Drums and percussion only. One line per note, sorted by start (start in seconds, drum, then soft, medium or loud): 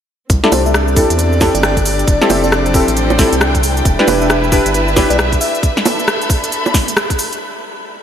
0.30 kick loud
0.30 closed hi-hat medium
0.30 cabasa soft
0.44 snare medium
0.52 open hi-hat loud
0.52 high bongo medium
0.52 cabasa medium
0.66 cabasa soft
0.74 cross-stick loud
0.74 cabasa soft
0.88 cabasa soft
0.96 kick loud
0.96 open hi-hat medium
0.96 cabasa medium
1.10 closed hi-hat medium
1.10 cabasa soft
1.19 closed hi-hat medium
1.19 cabasa soft
1.33 cabasa soft
1.41 kick loud
1.41 snare medium
1.41 open hi-hat loud
1.41 high bongo medium
1.41 cabasa medium
1.55 closed hi-hat medium
1.55 cabasa soft
1.63 cross-stick loud
1.63 cabasa soft
1.77 kick medium
1.77 closed hi-hat medium
1.77 cabasa soft
1.85 open hi-hat loud
1.85 cabasa medium
1.99 closed hi-hat soft
1.99 cabasa soft
2.08 kick loud
2.08 closed hi-hat medium
2.08 cabasa soft
2.22 snare medium
2.22 cabasa soft
2.30 open hi-hat loud
2.30 high bongo medium
2.30 cabasa medium
2.44 cabasa soft
2.52 cross-stick loud
2.52 cabasa soft
2.66 closed hi-hat soft
2.66 cabasa soft
2.74 kick loud
2.74 open hi-hat loud
2.74 cabasa medium
2.88 closed hi-hat medium
2.88 cabasa soft
2.97 closed hi-hat medium
2.97 cabasa soft
3.10 high bongo medium
3.10 cabasa soft
3.19 kick loud
3.19 snare medium
3.19 open hi-hat loud
3.19 cabasa medium
3.33 closed hi-hat medium
3.33 cabasa soft
3.41 cross-stick loud
3.41 cabasa soft
3.55 kick medium
3.55 closed hi-hat medium
3.55 cabasa soft
3.63 open hi-hat medium
3.63 cabasa medium
3.77 closed hi-hat soft
3.77 cabasa soft
3.85 kick loud
3.85 closed hi-hat medium
3.85 cabasa soft
3.99 snare medium
4.08 open hi-hat loud
4.08 high bongo medium
4.08 cabasa medium
4.21 cabasa soft
4.30 cross-stick loud
4.30 cabasa soft
4.44 cabasa soft
4.52 kick loud
4.52 open hi-hat medium
4.52 cabasa medium
4.66 closed hi-hat medium
4.66 cabasa soft
4.74 closed hi-hat medium
4.74 cabasa soft
4.88 cabasa soft
4.96 kick loud
4.96 snare medium
4.96 open hi-hat loud
4.96 high bongo medium
4.96 cabasa medium
5.10 closed hi-hat medium
5.10 cabasa soft
5.19 cross-stick loud
5.19 cabasa soft
5.32 kick medium
5.32 closed hi-hat medium
5.32 cabasa soft
5.41 open hi-hat medium
5.41 cabasa medium
5.55 closed hi-hat soft
5.55 cabasa soft
5.63 kick loud
5.63 closed hi-hat medium
5.63 cabasa soft
5.77 snare medium
5.77 cabasa soft
5.86 open hi-hat loud
5.86 high bongo medium
5.86 cabasa medium
5.99 cabasa soft
6.08 cross-stick loud
6.08 cabasa soft
6.21 closed hi-hat soft
6.21 cabasa soft
6.30 kick loud
6.30 open hi-hat medium
6.30 cabasa medium
6.44 closed hi-hat medium
6.44 cabasa soft
6.52 closed hi-hat medium
6.52 cabasa soft
6.66 high bongo medium
6.66 cabasa soft
6.74 kick loud
6.74 snare medium
6.74 open hi-hat loud
6.74 cabasa medium
6.88 closed hi-hat medium
6.88 cabasa soft
6.97 cross-stick loud
6.97 cabasa soft
7.10 kick medium
7.10 closed hi-hat medium
7.10 cabasa soft
7.19 open hi-hat medium
7.19 cabasa medium
7.32 closed hi-hat soft
7.32 cabasa soft